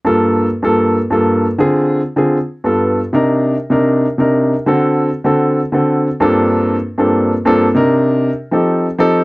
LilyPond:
\new Staff \with { instrumentName = "Grand piano" } { \time 4/4 \key g \minor \tempo 4 = 156 <g, bes f' a'>4 r8 <g, bes f' a'>4 r16 <g, bes f' a'>8. r8 | <d c' f' aes'>4 r8 <d c' f' aes'>8 r8. <g, b f' a'>8. r8 | <c d' ees' bes'>4 r8 <c d' ees' bes'>4 r16 <c d' ees' bes'>8. r8 | <d c' fis' a'>4 r8 <d c' fis' a'>4 r16 <d c' fis' a'>8. r8 |
<g, bes c' d' f' a'>4. r8 <g, bes c' d' f' a'>4 r16 <g, bes c' d' f' a'>8 r16 | <c d' ees' bes'>4. r8 <f c' ees' g' a'>4 r16 <f c' ees' g' a'>8 r16 | }